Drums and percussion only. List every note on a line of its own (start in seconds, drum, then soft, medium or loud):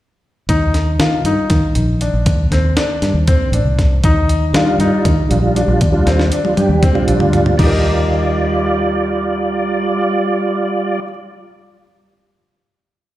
0.49 kick medium
0.49 closed hi-hat medium
0.74 snare soft
0.74 closed hi-hat soft
1.00 snare medium
1.00 closed hi-hat medium
1.25 closed hi-hat medium
1.50 kick medium
1.50 snare soft
1.50 closed hi-hat medium
1.75 closed hi-hat medium
2.01 closed hi-hat medium
2.26 kick medium
2.26 closed hi-hat medium
2.52 snare soft
2.52 closed hi-hat soft
2.77 snare medium
2.77 closed hi-hat medium
3.02 snare soft
3.02 closed hi-hat medium
3.27 kick medium
3.27 closed hi-hat medium
3.53 closed hi-hat medium
3.79 kick medium
3.79 snare soft
3.79 closed hi-hat soft
4.04 kick medium
4.04 closed hi-hat medium
4.29 closed hi-hat medium
4.54 snare loud
4.54 closed hi-hat medium
4.80 closed hi-hat medium
5.05 kick medium
5.05 closed hi-hat medium
5.31 closed hi-hat medium
5.56 closed hi-hat medium
5.81 kick medium
5.81 closed hi-hat medium
6.07 snare soft
6.07 closed hi-hat medium
6.19 snare soft
6.32 closed hi-hat medium
6.45 high tom medium
6.57 closed hi-hat medium
6.57 high tom medium
6.83 kick medium
6.83 closed hi-hat medium
6.83 mid tom medium
6.95 mid tom medium
7.08 closed hi-hat medium
7.20 floor tom medium
7.33 closed hi-hat soft
7.33 floor tom medium
7.46 floor tom medium
7.59 kick medium
7.59 crash medium